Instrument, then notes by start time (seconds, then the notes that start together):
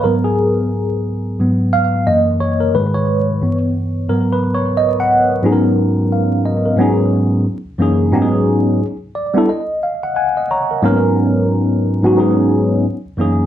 tine electric piano
0.04 G#2 F#3 B3 A#4
0.24 G#4
1.39 G#2 F#3 B3
1.73 F5
2.06 F#2 E3 A#3 D#5
2.40 C#5
2.60 A#4
2.74 G#2 D#3 G#3 B4
2.94 C#5
3.41 G2 E3 B3
4.09 G#2 F#3 B3 A#4
4.32 B4
4.54 C#5
4.77 D#5
5.00 F#5
5.43 G#2 F#3 B3 C#4 D#4 G#4
5.52 A#4
6.12 F5
6.45 D#5
6.65 A#4
6.77 G#2 F#3 B3 C#4 D#4
6.81 G#4
7.78 F#2 E3 A#3 C#4 D#4 G#4
8.12 G#2 F#3 B3 C#4 D#4 G4
8.22 G#4
9.15 D5
9.34 G3 B3 D4 E4
9.38 A4
9.49 D#5
9.83 F5
10.03 F#5
10.16 F#5 G#5
10.37 D#5
10.51 C#5 A#5
10.71 A#4
10.82 G#2 F#3 A#3 C#4 D#4 A#4
10.90 B3
12.03 G#2 F#3 B3 C#4 D#4 F#4
12.16 G#2 F#3 B3 C#4 D#4 G#4
13.17 F#2 E3 A#3 C#4 D#4 G#4